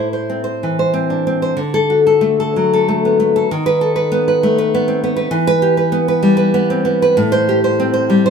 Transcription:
Already playing: A2 E4
0.13 C5
0.30 C4
0.44 C5
0.63 E3
0.79 C5
0.94 C4
1.10 D4
1.27 C4
1.42 C5
1.57 D3
1.74 A4
1.90 F#4
2.07 A4
2.21 A3
2.40 A4
2.56 F#3
2.73 A4
2.88 A3
3.05 B3
3.20 A3
3.36 A4
3.51 D#3
3.66 B4
3.81 A4
3.96 B4
4.12 B3
4.28 B4
4.43 A3
4.58 B4
4.74 B3
4.88 C4
5.04 B3
5.16 B4
5.31 E3
5.47 B4
5.62 G4
5.77 B4
5.92 B3
6.08 B4
6.23 G3
6.37 B4
6.54 B3
6.70 C4
6.85 B3
7.02 B4
7.17 A2
7.32 C5
7.49 G4
7.64 C5
7.80 C4
7.94 C5
8.10 G3
8.26 C5

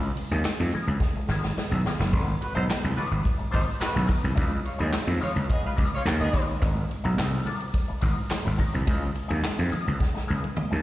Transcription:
Already playing: C#2
0.00 muted clean electric guitar stroke, muted conga, high conga, shaker
0.15 muted clean electric guitar stroke, open hi-hat, ride, shaker
0.31 D#2 B3 F4 G#4 D#5, shaker
0.44 snare, clap, hi-hat pedal, ride, high conga, shaker
0.59 F2, muted clean electric guitar stroke, muted conga, shaker
0.72 B3 F4 G#4 D#5, ride, high conga, low conga, shaker
0.87 C#2, muted clean electric guitar stroke, shaker
1.00 muted clean electric guitar stroke, kick, snare, shaker
1.15 muted slap bass stroke, muted clean electric guitar stroke, muted conga, shaker
1.28 G#1 B3 F4 G#4 D#5, snare, shaker
1.43 muted clean electric guitar stroke, snare, high conga, shaker
1.57 muted slap bass stroke, muted clean electric guitar stroke, snare, muted conga, shaker
1.71 B1, muted clean electric guitar stroke, muted conga, high conga, low conga, shaker
1.84 B3 F4 G#4 D#5, snare, high conga, low conga, shaker
2.00 F#1, muted clean electric guitar stroke, snare, shaker
2.13 G#1 C4 F#4 A#4 D#5, kick, splash, shaker
2.27 muted clean electric guitar stroke, muted conga, high conga, shaker
2.40 F#4 B4, muted clean electric guitar stroke, ride, shaker
2.54 B1 F#3 C4 D#4 F#4 A#4 C5 D#5, shaker
2.68 snare, clap, ride, muted conga, high conga, shaker
2.83 C2, muted clean electric guitar stroke, muted conga, shaker
2.96 C4 F#4 A#4 B4 D#5, ride, high conga, low conga, shaker
3.11 G#1, muted clean electric guitar stroke, shaker
3.24 muted clean electric guitar stroke, kick, ride, muted conga, shaker
3.38 muted clean electric guitar stroke, muted slap bass stroke, muted conga, shaker
3.51 G#1 F#3 C4 D#4 F#4 A#4 C5 D#5, kick, open hi-hat, ride, shaker
3.66 muted clean electric guitar stroke, high conga, shaker
3.80 F#4 B4, muted clean electric guitar stroke, muted slap bass stroke, snare, clap, hi-hat pedal, ride, muted conga, shaker
3.94 B1, muted clean electric guitar stroke, muted conga, high conga, low conga, shaker
4.06 C4 F#4 A#4 D#5, kick, open hi-hat, ride, high conga, low conga, shaker
4.22 C2, muted clean electric guitar stroke, shaker
4.35 C#2 C#4 F4 B4 D#5, kick, hi-hat pedal, ride, shaker
4.39 muted conga
4.50 muted clean electric guitar stroke, high conga, shaker
4.64 G#3 F4 C#5, muted clean electric guitar stroke, ride, shaker
4.78 D#2 B3 C#4 F4 G#4 B4 D#5, shaker
4.93 snare, clap, ride, high conga, shaker
5.07 F2, muted clean electric guitar stroke, muted conga, shaker
5.20 G#3 C#4 F4 B4 C#5 D#5, ride, high conga, low conga, shaker
5.36 C#2, muted clean electric guitar stroke, ride, shaker
5.49 B3 G#4 D#5, muted clean electric guitar stroke, kick, ride, muted conga, shaker
5.63 G#3 F4 B4, muted clean electric guitar stroke, muted slap bass stroke, muted conga, shaker
5.76 C#2 C#4 F4 B4 D#5, kick, open hi-hat, ride, shaker
5.91 G#3 F4 C#5, muted clean electric guitar stroke, high conga, shaker
6.05 D#2, muted clean electric guitar stroke, snare, clap, hi-hat pedal, ride, muted conga, shaker
6.20 B3 G#4 D#5, muted clean electric guitar stroke, high conga, low conga, shaker
6.33 C#4 F4 B4 D#5, kick, open hi-hat, ride, high conga, low conga, shaker
6.48 muted clean electric guitar stroke, shaker
6.61 G#1 C4 F#4 A#4 D#5, kick, hi-hat pedal, ride, shaker
6.75 muted clean electric guitar stroke, muted conga, high conga, shaker
6.89 muted clean electric guitar stroke, ride, shaker
7.04 B1 C4 F#4 A#4 D#5, shaker
7.17 C2, snare, clap, ride, muted conga, high conga, shaker
7.32 muted clean electric guitar stroke, muted conga, shaker
7.45 C4 F#4 A#4 D#5, ride, high conga, low conga, shaker
7.60 muted clean electric guitar stroke, ride, shaker
7.73 muted clean electric guitar stroke, kick, ride, muted conga, shaker
7.88 muted clean electric guitar stroke, muted slap bass stroke, muted conga, shaker
8.01 G#1 C4 F#4 A#4 D#5, kick, open hi-hat, ride, shaker
8.16 muted clean electric guitar stroke, high conga, shaker
8.29 muted clean electric guitar stroke, muted slap bass stroke, snare, clap, hi-hat pedal, ride, shaker
8.45 G#1, muted clean electric guitar stroke, muted conga, high conga, low conga, shaker
8.58 C4 F#4 A#4 D#5, kick, open hi-hat, ride, high conga, low conga, shaker
8.74 C2, muted clean electric guitar stroke, shaker
8.87 C#2 B3 F4 G#4 D#5, kick, hi-hat pedal, ride, muted conga, shaker
9.00 muted clean electric guitar stroke, high conga, shaker
9.15 muted clean electric guitar stroke, open hi-hat, ride, shaker
9.28 D#2 B3 F4 G#4 D#5, shaker
9.43 snare, clap, hi-hat pedal, ride, muted conga, high conga, shaker
9.58 F2, muted clean electric guitar stroke, shaker
9.70 B3 F4 G#4 D#5, ride, high conga, low conga, shaker
9.86 C#2, muted clean electric guitar stroke, shaker
9.99 muted clean electric guitar stroke, kick, snare, muted conga, shaker
10.14 muted clean electric guitar stroke, muted slap bass stroke, snare, muted conga, shaker
10.27 C#2 B3 F4 G#4 D#5, shaker
10.42 muted clean electric guitar stroke, high tom, high conga, shaker
10.56 muted clean electric guitar stroke, muted slap bass stroke, mid tom, muted conga, shaker
10.70 D#2, muted clean electric guitar stroke, muted conga, high conga, low conga, shaker

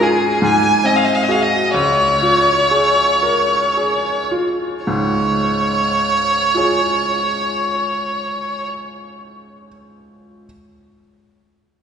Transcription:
Already playing: G#2 C#4
0.01 F4 G#4
0.42 G#2 G#5
0.84 C4 D#5
0.96 F5
1.04 D#5
1.15 F5
1.23 D#5
1.29 F#4 G#4 F5
1.42 D#5
1.74 C#2 C#5
2.22 F4
2.71 G#4
3.23 A#4
3.77 G#4
4.31 F4
4.85 C#2 G#2 C#5
6.55 F4 G#4 C#5

